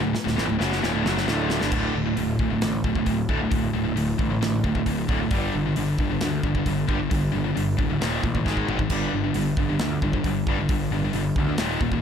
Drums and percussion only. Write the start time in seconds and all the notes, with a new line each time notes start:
0.15 snare
0.27 snare
0.38 snare
0.61 snare
0.72 snare
0.84 snare
1.06 snare
1.17 snare
1.28 snare
1.50 snare
1.61 snare
1.72 kick, crash
2.17 open hi-hat
2.39 kick
2.62 snare, open hi-hat
2.84 kick
2.95 kick
3.06 kick, open hi-hat
3.29 kick
3.52 kick, open hi-hat
3.97 open hi-hat
4.19 kick
4.42 snare, open hi-hat
4.64 kick
4.75 kick
4.86 kick, open hi-hat
5.09 kick
5.31 kick, open hi-hat
5.76 open hi-hat
5.99 kick
6.21 snare, open hi-hat
6.43 kick
6.55 kick
6.66 kick, open hi-hat
6.89 kick
7.11 kick, open hi-hat
7.57 open hi-hat
7.79 kick
8.02 snare, open hi-hat
8.24 kick
8.35 kick
8.46 kick, snare
8.57 kick
8.69 mid tom
8.79 kick
8.90 kick, open hi-hat, splash
9.34 open hi-hat
9.57 kick
9.79 snare, open hi-hat
10.02 kick
10.13 kick
10.24 kick, open hi-hat
10.47 kick
10.69 kick, open hi-hat
11.13 open hi-hat
11.36 kick
11.58 snare, open hi-hat
11.81 kick
11.92 kick